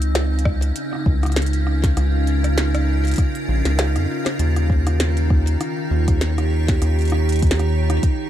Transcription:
Already playing: analog synth bass C#2, ambient pad C#3 C#4 D#4
0.02 closed hi-hat
0.15 cross-stick, snare, closed hi-hat
0.39 closed hi-hat
0.45 kick, cross-stick
0.62 closed hi-hat
0.76 closed hi-hat
0.93 cross-stick
0.95 cross-stick
0.99 cross-stick
1.02 ambient pad F4, cross-stick
1.04 analog synth bass C#2, kick, cross-stick
1.20 ambient pad A#4, cross-stick, closed hi-hat
1.25 cross-stick, closed hi-hat
1.30 cross-stick
1.32 cross-stick, closed hi-hat
1.34 cross-stick, snare, closed hi-hat
1.42 closed hi-hat
1.46 closed hi-hat
1.53 closed hi-hat
1.67 cross-stick
1.84 kick, snare, closed hi-hat
1.97 analog synth bass C#2, cross-stick, closed hi-hat
2.27 closed hi-hat
2.44 cross-stick, closed hi-hat
2.58 snare, closed hi-hat
2.75 cross-stick, closed hi-hat
3.05 closed hi-hat
3.07 closed hi-hat
3.12 closed hi-hat
3.14 closed hi-hat
3.16 kick, cross-stick, closed hi-hat
3.18 closed hi-hat
3.35 closed hi-hat
3.48 analog synth bass A#1
3.65 analog synth bass C#2, snare, closed hi-hat
3.79 snare, closed hi-hat
3.96 analog synth bass F2, cross-stick, closed hi-hat
4.26 cross-stick, snare, closed hi-hat
4.39 analog synth bass D#2, ambient pad D#3, closed hi-hat
4.56 cross-stick, closed hi-hat
4.70 kick
4.87 cross-stick, closed hi-hat
5.00 snare, closed hi-hat
5.17 closed hi-hat
5.30 kick, cross-stick
5.47 closed hi-hat
5.52 ambient pad C#5
5.61 ambient pad G4, cross-stick, closed hi-hat
5.91 analog synth bass D#2
6.08 kick, cross-stick, closed hi-hat
6.21 snare, closed hi-hat
6.38 cross-stick, closed hi-hat
6.68 kick, snare, closed hi-hat
6.82 analog synth bass D#2, cross-stick, closed hi-hat
6.99 closed hi-hat
7.01 closed hi-hat
7.05 closed hi-hat
7.08 closed hi-hat
7.10 cross-stick, closed hi-hat
7.29 closed hi-hat
7.32 closed hi-hat
7.36 closed hi-hat
7.39 kick, closed hi-hat
7.43 closed hi-hat
7.47 closed hi-hat
7.51 snare, closed hi-hat
7.55 closed hi-hat
7.59 cross-stick, closed hi-hat
7.90 cross-stick, closed hi-hat
8.03 kick, closed hi-hat

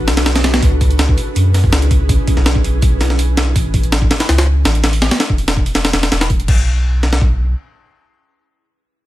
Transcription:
Already playing: ambient pad D4 F#4 A4 B4
0.08 sub bass B1, snare, open hi-hat
0.17 snare, open hi-hat
0.26 snare, open hi-hat
0.35 snare, open hi-hat
0.44 snare, open hi-hat
0.54 snare, open hi-hat
0.62 sub bass C#2, ambient pad C#4 E4 G#4, kick, open hi-hat
0.81 kick, open hi-hat
0.91 closed hi-hat
0.99 snare, open hi-hat
1.09 kick
1.18 open hi-hat
1.36 sub bass F#2, open hi-hat
1.54 snare, open hi-hat
1.64 kick
1.72 sub bass C#2, snare, open hi-hat
1.82 closed hi-hat
1.91 kick, open hi-hat
2.09 kick, open hi-hat
2.27 kick, open hi-hat
2.37 sub bass B1, snare
2.46 snare, open hi-hat
2.55 kick
2.64 open hi-hat
2.82 kick, open hi-hat
3.01 snare, open hi-hat
3.10 snare
3.19 open hi-hat
3.37 snare, open hi-hat
3.56 sub bass A1, kick, open hi-hat
3.74 kick, open hi-hat
3.83 closed hi-hat
3.92 snare, open hi-hat
4.02 kick
4.11 snare, open hi-hat
4.20 snare, open hi-hat
4.29 sub bass C#2, snare, open hi-hat
4.38 snare, open hi-hat
4.65 sub bass A1, snare, open hi-hat
4.75 closed hi-hat
4.84 snare, open hi-hat
4.93 open hi-hat
5.02 snare, open hi-hat
5.11 snare, open hi-hat
5.20 snare, open hi-hat
5.30 sub bass E1, kick
5.38 open hi-hat
5.48 snare, open hi-hat
5.57 kick
5.66 open hi-hat
5.75 snare, open hi-hat
5.85 snare, open hi-hat
5.93 sub bass E1, snare, open hi-hat
6.03 snare, open hi-hat
6.12 sub bass E1, snare, open hi-hat
6.21 snare, open hi-hat
6.30 kick, open hi-hat
6.40 closed hi-hat
6.48 sub bass B1, kick, crash
7.03 snare
7.13 snare
7.21 kick

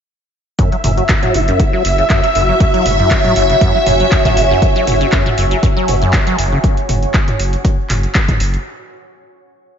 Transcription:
0.59 acid bass F#2, ambient pad F#4, string machine E5, kick, closed hi-hat
0.72 acid bass F#3, closed hi-hat
0.84 sub bass F#1, acid bass F#2, mid tom, open hi-hat
0.97 acid bass F#3, closed hi-hat
1.09 acid bass F#2, kick, clap, closed hi-hat
1.23 acid bass F#3, closed hi-hat, mid tom
1.32 sub bass F#1, acid bass F#2, ambient pad C#5, open hi-hat
1.48 acid bass F#2, closed hi-hat
1.60 acid bass A2, kick, closed hi-hat
1.73 acid bass F#3
1.85 sub bass F#1, acid bass F#1, open hi-hat
1.98 acid bass C#3, ambient pad G#5, closed hi-hat
2.10 acid bass F#2, kick, clap, closed hi-hat
2.23 acid bass F#3, closed hi-hat
2.35 sub bass F#1, acid bass F#2, open hi-hat
2.49 acid bass F#3
2.60 acid bass F#2, kick, closed hi-hat
2.74 acid bass F#3, closed hi-hat
2.86 sub bass F#1, acid bass F#2, mid tom, open hi-hat
2.99 acid bass F#2, closed hi-hat
3.11 acid bass A2, kick, clap, closed hi-hat
3.24 acid bass F#3, closed hi-hat, mid tom
3.36 sub bass F#1, acid bass F#1, open hi-hat
3.50 acid bass C#3, closed hi-hat
3.61 acid bass F#2, kick, closed hi-hat
3.75 acid bass F#3
3.86 sub bass F#1, acid bass F#2, mid tom, open hi-hat
4.00 acid bass F#3, closed hi-hat
4.12 acid bass F#2, kick, clap, closed hi-hat
4.25 acid bass F#3, kick, closed hi-hat, mid tom
4.37 sub bass F#1, acid bass F#2, open hi-hat
4.50 acid bass F#2
4.62 acid bass A2, kick, closed hi-hat
4.76 acid bass F#3, closed hi-hat
4.87 sub bass F#1, acid bass F#1, mid tom, open hi-hat
5.01 acid bass C#3, closed hi-hat
5.12 acid bass F#2, kick, clap, closed hi-hat
5.26 acid bass F#3, closed hi-hat, mid tom
5.38 sub bass F#1, acid bass F#2, open hi-hat
5.51 acid bass F#3, closed hi-hat
5.63 acid bass F#2, kick, closed hi-hat
5.76 acid bass F#3
5.88 sub bass F#1, acid bass F#2, open hi-hat
6.02 acid bass F#2, closed hi-hat
6.13 acid bass A2, kick, clap, closed hi-hat
6.27 acid bass F#3, closed hi-hat
6.39 sub bass F#1, acid bass F#1, open hi-hat
6.52 acid bass C#3
6.64 kick, closed hi-hat
6.77 closed hi-hat
6.89 sub bass F#1, mid tom, open hi-hat
7.03 closed hi-hat
7.14 kick, clap, closed hi-hat
7.28 closed hi-hat, mid tom
7.39 sub bass F#1, open hi-hat
7.53 closed hi-hat
7.65 kick, closed hi-hat
7.90 sub bass F#1, clap, mid tom, open hi-hat
8.03 closed hi-hat
8.15 kick, clap, closed hi-hat
8.28 kick, closed hi-hat, mid tom
8.40 sub bass F#1, open hi-hat
8.54 closed hi-hat

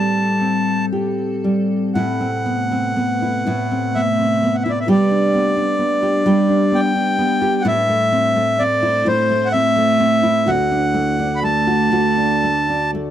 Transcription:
Already playing: nylon-string guitar A2 G3 C4 G4, ambient pad G3 C4 A4, accordion A5
0.41 nylon-string guitar C4
0.93 nylon-string guitar G4
1.44 nylon-string guitar G3
1.93 nylon-string guitar A2 E4, ambient pad C3 A3 B4, accordion F#5
2.21 nylon-string guitar C4
2.46 nylon-string guitar B3
2.71 nylon-string guitar C4
2.96 nylon-string guitar B3
3.22 nylon-string guitar E4
3.47 nylon-string guitar A2 E4
3.71 nylon-string guitar C4
3.95 nylon-string guitar B3, accordion E5
4.19 nylon-string guitar C4
4.43 nylon-string guitar B3
4.55 accordion F#5
4.63 nylon-string guitar E4, accordion E5
4.70 accordion D5
4.80 accordion E5
4.88 nylon-string guitar G3 G4, ambient pad G3 D4, accordion D5
5.11 nylon-string guitar D4
5.35 nylon-string guitar B3
5.57 nylon-string guitar D4
5.79 nylon-string guitar B3
6.03 nylon-string guitar G4
6.26 nylon-string guitar G3 G4
6.49 nylon-string guitar D4
6.72 nylon-string guitar B3, accordion G5
6.95 nylon-string guitar D4
7.19 nylon-string guitar B3
7.42 nylon-string guitar G4
7.61 nylon-string guitar A2, ambient pad C5, accordion F#5
7.65 ambient pad A3 E4, nylon-string guitar E4, accordion E5
7.89 nylon-string guitar A3
8.13 nylon-string guitar C4
8.36 nylon-string guitar A3
8.59 nylon-string guitar C4, accordion D5
8.83 nylon-string guitar E4
9.06 nylon-string guitar A2 E4, accordion C5
9.30 nylon-string guitar A3
9.45 accordion F#5
9.52 nylon-string guitar C4, accordion E5
9.76 nylon-string guitar A3
10.00 nylon-string guitar C4
10.23 nylon-string guitar E4
10.47 nylon-string guitar D2 F#4, ambient pad F#4 D5, accordion F#5
10.71 nylon-string guitar D4
10.94 nylon-string guitar A3
11.19 nylon-string guitar D4
11.36 accordion B5
11.43 nylon-string guitar A3, accordion A5
11.67 nylon-string guitar F#4
11.92 nylon-string guitar D2 F#4
12.17 nylon-string guitar D4
12.44 nylon-string guitar A3
12.70 nylon-string guitar D4
12.95 nylon-string guitar A3

